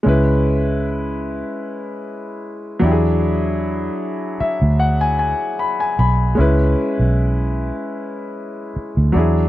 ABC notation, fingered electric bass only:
X:1
M:4/4
L:1/16
Q:"Swing 16ths" 1/4=76
K:C#phr
V:1 name="Fingered electric bass" clef=bass
C,,6- C,, z6 z E,,2- | E,,4 z3 D,,4 z3 B,,,2 | C,,2 z B,,,4 z6 D,, E,,2 |]